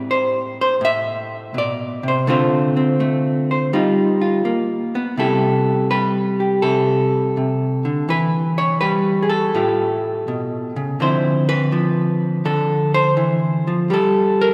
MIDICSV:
0, 0, Header, 1, 2, 480
1, 0, Start_track
1, 0, Key_signature, 0, "major"
1, 0, Tempo, 726392
1, 1501, Time_signature, 4, 2, 24, 8
1, 9607, End_track
2, 0, Start_track
2, 0, Title_t, "Hollow-body jazz guitar"
2, 0, Program_c, 0, 26
2, 0, Note_on_c, 0, 45, 74
2, 0, Note_on_c, 0, 60, 52
2, 0, Note_on_c, 0, 64, 54
2, 0, Note_on_c, 0, 67, 50
2, 0, Note_on_c, 0, 74, 84
2, 68, Note_off_c, 0, 74, 0
2, 71, Note_off_c, 0, 60, 0
2, 71, Note_on_c, 0, 72, 86
2, 393, Note_off_c, 0, 72, 0
2, 406, Note_on_c, 0, 72, 93
2, 494, Note_off_c, 0, 72, 0
2, 528, Note_off_c, 0, 45, 0
2, 536, Note_on_c, 0, 45, 65
2, 560, Note_on_c, 0, 76, 108
2, 1017, Note_off_c, 0, 45, 0
2, 1019, Note_on_c, 0, 47, 59
2, 1030, Note_off_c, 0, 76, 0
2, 1045, Note_on_c, 0, 74, 93
2, 1341, Note_off_c, 0, 47, 0
2, 1344, Note_on_c, 0, 48, 61
2, 1358, Note_off_c, 0, 74, 0
2, 1375, Note_on_c, 0, 72, 75
2, 1489, Note_off_c, 0, 64, 0
2, 1491, Note_off_c, 0, 67, 0
2, 1499, Note_off_c, 0, 48, 0
2, 1502, Note_on_c, 0, 50, 76
2, 1506, Note_on_c, 0, 57, 60
2, 1509, Note_on_c, 0, 60, 61
2, 1512, Note_off_c, 0, 72, 0
2, 1518, Note_on_c, 0, 65, 63
2, 1522, Note_on_c, 0, 72, 56
2, 1820, Note_off_c, 0, 60, 0
2, 1828, Note_on_c, 0, 60, 55
2, 1976, Note_off_c, 0, 57, 0
2, 1983, Note_on_c, 0, 57, 60
2, 2311, Note_off_c, 0, 72, 0
2, 2319, Note_on_c, 0, 72, 58
2, 2442, Note_off_c, 0, 57, 0
2, 2447, Note_off_c, 0, 72, 0
2, 2448, Note_off_c, 0, 65, 0
2, 2459, Note_off_c, 0, 50, 0
2, 2460, Note_off_c, 0, 60, 0
2, 2466, Note_on_c, 0, 55, 72
2, 2469, Note_on_c, 0, 63, 60
2, 2478, Note_on_c, 0, 65, 61
2, 2777, Note_off_c, 0, 65, 0
2, 2785, Note_on_c, 0, 65, 58
2, 2938, Note_off_c, 0, 55, 0
2, 2940, Note_on_c, 0, 58, 57
2, 3264, Note_off_c, 0, 58, 0
2, 3272, Note_on_c, 0, 59, 64
2, 3400, Note_off_c, 0, 65, 0
2, 3404, Note_off_c, 0, 63, 0
2, 3419, Note_on_c, 0, 48, 69
2, 3422, Note_off_c, 0, 59, 0
2, 3426, Note_on_c, 0, 55, 46
2, 3428, Note_on_c, 0, 64, 41
2, 3434, Note_on_c, 0, 69, 75
2, 3436, Note_on_c, 0, 67, 46
2, 3901, Note_off_c, 0, 69, 0
2, 3903, Note_on_c, 0, 71, 90
2, 3904, Note_off_c, 0, 55, 0
2, 3907, Note_on_c, 0, 55, 59
2, 4227, Note_off_c, 0, 67, 0
2, 4229, Note_on_c, 0, 67, 45
2, 4373, Note_off_c, 0, 48, 0
2, 4374, Note_off_c, 0, 71, 0
2, 4376, Note_on_c, 0, 69, 80
2, 4381, Note_on_c, 0, 48, 61
2, 4860, Note_off_c, 0, 48, 0
2, 4871, Note_on_c, 0, 48, 52
2, 5187, Note_on_c, 0, 50, 58
2, 5191, Note_off_c, 0, 48, 0
2, 5324, Note_off_c, 0, 67, 0
2, 5339, Note_off_c, 0, 69, 0
2, 5340, Note_off_c, 0, 50, 0
2, 5343, Note_on_c, 0, 52, 69
2, 5354, Note_on_c, 0, 71, 92
2, 5667, Note_off_c, 0, 71, 0
2, 5669, Note_on_c, 0, 73, 98
2, 5742, Note_off_c, 0, 64, 0
2, 5816, Note_off_c, 0, 73, 0
2, 5817, Note_off_c, 0, 55, 0
2, 5819, Note_on_c, 0, 71, 87
2, 5825, Note_on_c, 0, 55, 59
2, 6096, Note_on_c, 0, 68, 56
2, 6140, Note_off_c, 0, 71, 0
2, 6142, Note_on_c, 0, 69, 79
2, 6153, Note_off_c, 0, 68, 0
2, 6304, Note_off_c, 0, 55, 0
2, 6307, Note_on_c, 0, 45, 71
2, 6309, Note_on_c, 0, 57, 50
2, 6314, Note_on_c, 0, 65, 40
2, 6318, Note_on_c, 0, 67, 47
2, 6331, Note_off_c, 0, 52, 0
2, 6786, Note_off_c, 0, 45, 0
2, 6792, Note_on_c, 0, 47, 56
2, 7110, Note_off_c, 0, 47, 0
2, 7113, Note_on_c, 0, 49, 57
2, 7254, Note_off_c, 0, 67, 0
2, 7263, Note_off_c, 0, 69, 0
2, 7266, Note_off_c, 0, 49, 0
2, 7269, Note_on_c, 0, 50, 69
2, 7272, Note_on_c, 0, 53, 39
2, 7273, Note_off_c, 0, 65, 0
2, 7276, Note_on_c, 0, 60, 49
2, 7282, Note_on_c, 0, 72, 80
2, 7286, Note_on_c, 0, 64, 48
2, 7588, Note_off_c, 0, 64, 0
2, 7591, Note_on_c, 0, 71, 100
2, 7611, Note_off_c, 0, 57, 0
2, 7738, Note_off_c, 0, 53, 0
2, 7746, Note_on_c, 0, 53, 59
2, 8079, Note_off_c, 0, 72, 0
2, 8221, Note_off_c, 0, 50, 0
2, 8228, Note_on_c, 0, 50, 61
2, 8231, Note_on_c, 0, 69, 71
2, 8551, Note_off_c, 0, 69, 0
2, 8553, Note_off_c, 0, 71, 0
2, 8553, Note_on_c, 0, 72, 99
2, 8699, Note_off_c, 0, 53, 0
2, 8701, Note_on_c, 0, 52, 57
2, 9031, Note_off_c, 0, 52, 0
2, 9036, Note_on_c, 0, 53, 54
2, 9172, Note_off_c, 0, 50, 0
2, 9186, Note_on_c, 0, 55, 68
2, 9190, Note_off_c, 0, 53, 0
2, 9190, Note_off_c, 0, 60, 0
2, 9190, Note_off_c, 0, 72, 0
2, 9192, Note_on_c, 0, 67, 44
2, 9208, Note_on_c, 0, 69, 76
2, 9517, Note_off_c, 0, 67, 0
2, 9525, Note_on_c, 0, 70, 93
2, 9607, Note_off_c, 0, 55, 0
2, 9607, Note_off_c, 0, 69, 0
2, 9607, Note_off_c, 0, 70, 0
2, 9607, End_track
0, 0, End_of_file